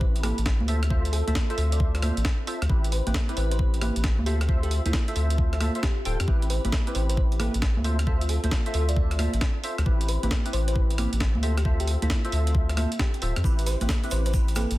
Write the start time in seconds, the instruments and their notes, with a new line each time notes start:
Already playing: sub bass A1, synth stab C4 E4 G4 B4, analog synth pad C4 E4 G4 B4
0.01 kick
0.16 closed hi-hat
0.23 synth stab C4 E4 G4 B4, fm electric piano A4, cross-stick, open hi-hat, high conga
0.38 sub bass A1, closed hi-hat
0.46 kick, snare
0.60 sub bass D2, high conga
0.68 synth stab F4 A4 C5 E5, analog synth pad F4 A4 E5, open hi-hat
0.83 cross-stick, closed hi-hat
0.90 synth stab F4 A4 C5 E5, kick
1.05 closed hi-hat
1.13 fm electric piano A4, open hi-hat
1.27 sub bass D2, synth stab F4 A4 C5 E5, closed hi-hat, high conga
1.35 kick, snare
1.50 synth stab F4 A4 C5 E5, closed hi-hat
1.58 sub bass D2, fm electric piano A4, open hi-hat
1.72 fm electric piano D5, closed hi-hat
1.80 kick
1.95 cross-stick, closed hi-hat
2.02 synth stab F4 A4 C5 E5, cross-stick, open hi-hat, high conga
2.17 sub bass A1, closed hi-hat
2.25 kick, snare
2.47 synth stab F4 A4 C5 E5, open hi-hat
2.62 sub bass D2, cross-stick, closed hi-hat
2.70 sub bass A1, synth stab C4 E4 G4 B4, analog synth pad G4 B4 E5, kick
2.84 closed hi-hat
2.92 fm electric piano C5, open hi-hat
3.07 sub bass A1, synth stab C4 E4 G4 B4, closed hi-hat, high conga
3.14 kick, snare
3.29 synth stab C4 E4 G4 B4, closed hi-hat
3.37 sub bass A1, fm electric piano C5, open hi-hat
3.51 fm electric piano C5, closed hi-hat
3.59 kick
3.74 closed hi-hat
3.81 synth stab C4 E4 G4 B4, cross-stick, open hi-hat, high conga
3.96 sub bass A1, closed hi-hat
4.04 kick, snare
4.18 sub bass D2, high conga
4.26 synth stab F4 A4 C5 E5, analog synth pad F4 A4, fm electric piano G4, open hi-hat
4.41 fm electric piano G4, cross-stick, closed hi-hat
4.49 synth stab F4 A4 C5 E5, kick
4.63 fm electric piano G4, closed hi-hat
4.71 open hi-hat
4.86 sub bass D2, fm electric piano E4, synth stab F4 A4 C5 E5, closed hi-hat, high conga
4.93 fm electric piano E4, kick, snare
5.08 synth stab F4 A4 C5 E5, closed hi-hat
5.16 sub bass D2, open hi-hat
5.30 closed hi-hat
5.38 kick
5.53 cross-stick, closed hi-hat
5.61 synth stab F4 A4 C5 E5, cross-stick, open hi-hat, high conga
5.75 synth stab F4 A4 C5 E5, closed hi-hat
5.83 fm electric piano G4, kick, snare
6.05 sub bass D1, synth stab F4 A4 C5 G5, open hi-hat
6.20 sub bass F2, cross-stick, closed hi-hat
6.28 sub bass A1, synth stab C4 E4 G4 B4, analog synth pad C4 G4 B4, kick
6.42 closed hi-hat
6.50 fm electric piano C5, open hi-hat
6.65 sub bass A1, synth stab C4 E4 G4 B4, closed hi-hat, high conga
6.72 kick, snare
6.87 synth stab C4 E4 G4 B4, closed hi-hat
6.95 sub bass A1, fm electric piano C5, open hi-hat
7.09 fm electric piano C5, closed hi-hat
7.17 kick
7.32 closed hi-hat
7.39 synth stab C4 E4 G4 B4, fm electric piano A4, cross-stick, open hi-hat, high conga
7.54 sub bass A1, closed hi-hat
7.62 kick, snare
7.77 sub bass D2, high conga
7.84 synth stab F4 A4 C5 E5, analog synth pad F4 A4, open hi-hat
7.99 cross-stick, closed hi-hat
8.07 synth stab F4 A4 C5 E5, kick
8.21 closed hi-hat
8.29 fm electric piano A4, open hi-hat
8.44 sub bass D2, synth stab F4 A4 C5 E5, closed hi-hat, high conga
8.51 kick, snare
8.66 synth stab F4 A4 C5 E5, closed hi-hat
8.74 sub bass D2, fm electric piano A4, open hi-hat
8.89 fm electric piano D5, closed hi-hat
8.96 kick
9.11 cross-stick, closed hi-hat
9.19 synth stab F4 A4 C5 E5, cross-stick, open hi-hat, high conga
9.34 sub bass A1, closed hi-hat
9.41 kick, snare
9.64 synth stab F4 A4 C5 E5, open hi-hat
9.78 sub bass D2, cross-stick, closed hi-hat
9.86 sub bass A1, analog synth pad C4 G4 B4 E5, synth stab C4 E4 G4 B4, kick
10.01 closed hi-hat
10.08 fm electric piano C5, open hi-hat
10.23 sub bass A1, synth stab C4 E4 G4 B4, closed hi-hat, high conga
10.31 kick, snare
10.46 synth stab C4 E4 G4 B4, closed hi-hat
10.53 sub bass A1, fm electric piano C5, open hi-hat
10.68 fm electric piano C5, closed hi-hat
10.76 kick
10.90 closed hi-hat
10.98 synth stab C4 E4 G4 B4, cross-stick, open hi-hat, high conga
11.13 sub bass A1, closed hi-hat
11.20 kick, snare
11.35 sub bass D2, high conga
11.43 analog synth pad F4 A4, synth stab F4 A4 C5 E5, fm electric piano G4, open hi-hat
11.57 fm electric piano G4, cross-stick, closed hi-hat
11.65 synth stab F4 A4 C5 E5, kick
11.80 fm electric piano G4, closed hi-hat
11.88 open hi-hat
12.02 sub bass D2, fm electric piano E4, synth stab F4 A4 C5 E5, closed hi-hat, high conga
12.10 fm electric piano E4, kick, snare
12.25 synth stab F4 A4 C5 E5, closed hi-hat
12.32 sub bass D2, open hi-hat
12.47 closed hi-hat
12.55 kick
12.69 cross-stick, closed hi-hat
12.77 synth stab F4 A4 C5 E5, cross-stick, open hi-hat, high conga
12.92 closed hi-hat
12.99 fm electric piano G4, kick, snare
13.14 closed hi-hat
13.22 sub bass D1, synth stab F4 A4 C5 E5, open hi-hat
13.36 sub bass F2, cross-stick, closed hi-hat
13.44 sub bass A1, synth stab C4 E4 G4 B4, analog synth pad C4 G4 B4 E5, kick, maracas
13.59 closed hi-hat, maracas
13.66 fm electric piano C5, open hi-hat, maracas
13.81 sub bass A1, synth stab C4 E4 G4 B4, closed hi-hat, high conga, maracas
13.89 kick, snare, maracas
14.04 synth stab C4 E4 G4 B4, closed hi-hat, maracas
14.11 sub bass A1, fm electric piano C5, open hi-hat, maracas
14.26 fm electric piano C5, closed hi-hat, maracas
14.33 kick, maracas
14.48 closed hi-hat, maracas
14.56 synth stab C4 E4 G4 B4, fm electric piano A4, cross-stick, open hi-hat, high conga, maracas
14.71 sub bass A1, closed hi-hat, maracas